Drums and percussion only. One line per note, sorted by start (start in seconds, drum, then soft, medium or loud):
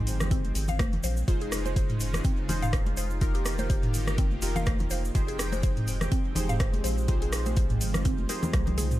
0.07 open hi-hat medium
0.07 shaker medium
0.20 cross-stick medium
0.20 closed hi-hat soft
0.20 muted conga soft
0.20 low conga medium
0.20 shaker medium
0.31 kick loud
0.31 closed hi-hat medium
0.31 shaker soft
0.45 closed hi-hat soft
0.45 high conga medium
0.55 open hi-hat loud
0.55 muted conga soft
0.55 shaker loud
0.68 closed hi-hat soft
0.68 low conga loud
0.68 shaker medium
0.79 kick loud
0.79 cross-stick loud
0.79 closed hi-hat medium
0.79 high conga loud
0.79 shaker soft
0.93 closed hi-hat soft
0.93 muted conga medium
0.93 low conga medium
1.03 open hi-hat medium
1.03 shaker loud
1.17 shaker medium
1.28 kick loud
1.28 closed hi-hat medium
1.28 muted conga medium
1.28 shaker soft
1.41 closed hi-hat soft
1.52 cross-stick medium
1.52 open hi-hat medium
1.52 shaker medium
1.65 closed hi-hat soft
1.65 muted conga soft
1.65 high conga medium
1.65 shaker medium
1.76 kick loud
1.76 closed hi-hat medium
1.76 shaker soft
1.90 closed hi-hat soft
1.90 mid tom medium
2.00 open hi-hat medium
2.00 shaker medium
2.13 cross-stick medium
2.13 closed hi-hat soft
2.13 muted conga medium
2.13 low conga medium
2.13 shaker medium
2.24 kick loud
2.24 closed hi-hat medium
2.24 shaker soft
2.48 open hi-hat medium
2.48 muted conga soft
2.48 high conga medium
2.48 low conga loud
2.48 shaker loud
2.62 closed hi-hat soft
2.62 mid tom medium
2.62 shaker soft
2.73 kick loud
2.73 cross-stick medium
2.73 closed hi-hat medium
2.73 shaker soft
2.86 closed hi-hat soft
2.86 muted conga medium
2.86 high conga medium
2.97 open hi-hat medium
2.97 shaker loud
3.10 shaker soft
3.21 kick loud
3.21 closed hi-hat medium
3.21 muted conga medium
3.21 shaker soft
3.35 closed hi-hat soft
3.45 cross-stick medium
3.45 open hi-hat medium
3.45 shaker medium
3.58 closed hi-hat soft
3.58 muted conga soft
3.58 high conga medium
3.58 shaker soft
3.70 kick loud
3.70 closed hi-hat medium
3.70 shaker soft
3.83 closed hi-hat soft
3.83 mid tom medium
3.94 open hi-hat medium
3.94 shaker medium
4.07 cross-stick medium
4.07 closed hi-hat soft
4.07 muted conga medium
4.07 shaker soft
4.18 kick loud
4.18 closed hi-hat medium
4.18 shaker soft
4.32 high conga medium
4.42 open hi-hat medium
4.42 muted conga soft
4.42 shaker medium
4.56 closed hi-hat soft
4.56 low conga loud
4.56 shaker medium
4.66 kick loud
4.66 cross-stick medium
4.66 closed hi-hat medium
4.66 high conga loud
4.66 shaker soft
4.80 closed hi-hat soft
4.80 muted conga soft
4.80 low conga medium
4.90 open hi-hat medium
4.90 shaker medium
5.05 shaker medium
5.15 kick loud
5.15 closed hi-hat medium
5.15 muted conga medium
5.15 shaker soft
5.28 closed hi-hat soft
5.39 cross-stick medium
5.39 open hi-hat medium
5.39 shaker loud
5.52 closed hi-hat soft
5.52 muted conga soft
5.52 high conga medium
5.52 shaker medium
5.63 kick loud
5.63 closed hi-hat medium
5.63 shaker soft
5.77 closed hi-hat soft
5.77 mid tom medium
5.88 open hi-hat medium
5.88 shaker loud
6.01 cross-stick medium
6.01 closed hi-hat soft
6.01 muted conga medium
6.01 low conga medium
6.01 shaker soft
6.12 kick loud
6.12 closed hi-hat medium
6.12 shaker soft
6.35 open hi-hat loud
6.35 muted conga soft
6.35 high conga medium
6.35 low conga loud
6.35 shaker medium
6.49 closed hi-hat soft
6.49 mid tom medium
6.49 shaker medium
6.60 kick loud
6.60 cross-stick medium
6.60 closed hi-hat medium
6.60 shaker soft
6.74 closed hi-hat soft
6.74 muted conga medium
6.74 high conga medium
6.84 open hi-hat medium
6.84 shaker loud
6.98 shaker soft
7.08 kick loud
7.08 closed hi-hat medium
7.08 muted conga medium
7.08 shaker soft
7.22 closed hi-hat soft
7.33 cross-stick medium
7.33 open hi-hat medium
7.33 shaker medium
7.46 closed hi-hat soft
7.46 muted conga soft
7.46 high conga medium
7.46 shaker medium
7.56 kick loud
7.56 closed hi-hat medium
7.56 shaker soft
7.70 closed hi-hat soft
7.70 mid tom medium
7.81 open hi-hat medium
7.81 shaker loud
7.94 cross-stick medium
7.94 closed hi-hat soft
7.94 muted conga medium
7.94 low conga medium
7.94 shaker medium
8.05 kick loud
8.05 closed hi-hat medium
8.05 shaker soft
8.19 high conga medium
8.29 open hi-hat loud
8.29 muted conga soft
8.29 shaker medium
8.42 closed hi-hat soft
8.42 high conga medium
8.42 low conga loud
8.42 shaker medium
8.53 kick loud
8.53 cross-stick medium
8.53 closed hi-hat medium
8.53 high tom medium
8.53 high conga loud
8.53 shaker soft
8.67 closed hi-hat soft
8.67 high tom medium
8.67 muted conga medium
8.67 low conga loud
8.78 open hi-hat medium
8.78 mid tom medium
8.78 high conga medium
8.78 shaker medium
8.91 closed hi-hat soft
8.91 mid tom medium
8.91 shaker medium